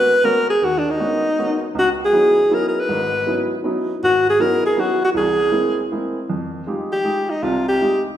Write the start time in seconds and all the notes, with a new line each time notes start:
Already playing: G#3 A#3 B3 C#4 F#4 B4
0.23 G#3 A#3 B3 C#4 F#4 A#4
0.50 G#4
0.62 D#2 F#4
0.78 D4
0.91 D#4
0.99 G#3 A#3 B3 C#4 F#4
1.38 G#3 A#3 B3 C#4 F#4
1.75 C#2 F#4
2.05 G#4
2.12 F#3 B3 C#4 D#4 E4
2.50 F#3 B3 C#4 D#4 E4
2.54 A#4
2.69 A#4
2.80 B4
2.89 G#1 G#2
3.27 F#3 B3 C#4 D#4 E4
3.64 F#3 B3 C#4 D#4 E4
4.03 G#1 F#4
4.30 G#4
4.39 F#3 B3 C#4 D#4 E4 A#4
4.66 G#4
4.77 F#3 B3 C#4 D#4 E4 F#4
5.05 F#4
5.14 C2 E3 G#4
5.51 G#3 A#3 C4 E4
5.91 G#3 A#3 C4 E4
6.30 F2
6.67 G#3 D#4 F4 G4
6.92 G4
7.04 G#3 D#4 F4 G4
7.30 D#4
7.43 C2 C3 F4
7.69 G4
7.81 G#3 D#4 F4 G4